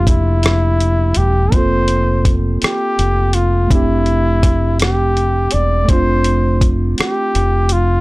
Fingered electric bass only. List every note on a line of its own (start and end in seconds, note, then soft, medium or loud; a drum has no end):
0.00 1.12 F1 medium
1.17 1.49 E1 medium
1.53 2.58 F1 medium
2.63 muted fingered electric bass stroke soft
2.99 3.67 F1 medium
3.71 5.49 F1 medium
5.54 5.86 E1 medium
5.89 6.94 F1 medium
7.00 muted fingered electric bass stroke soft
7.36 8.01 F1 medium